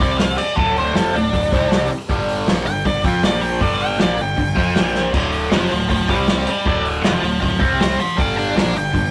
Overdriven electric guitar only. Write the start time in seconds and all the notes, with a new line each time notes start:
0.00 C3 G3 C4
0.39 muted overdriven electric guitar stroke
0.57 D2 A2 D3
0.95 F2 C3 F3
1.15 D2 A2
1.33 D2 A2
1.53 C3 G3 C4
1.92 muted overdriven electric guitar stroke
2.09 G2 D3 G3
2.47 A#2 F3 A#3
2.67 G2 D3
2.85 G2 D3
3.04 F3 C4 F4
3.23 A#2 F3 A#3
3.61 G2 D3 G3
3.98 A#2 F3 A#3
4.18 G2 D3
4.37 G2 D3
4.55 F3 C4 F4
4.75 A#2 F3 A#3
5.14 D2 A2 D3
5.51 F2 C3 F3
5.70 D2 A2
5.89 D2 A2
6.08 C3 G3 C4
6.46 muted overdriven electric guitar stroke
6.65 D2 A2 D3
7.03 F2 C3 F3
7.22 D2 A2
7.41 D2 A2
7.59 C3 G3 C4
7.98 muted overdriven electric guitar stroke
8.16 G2 D3 G3
8.55 A#2 F3 A#3
8.74 G2 D3
8.93 G2 D3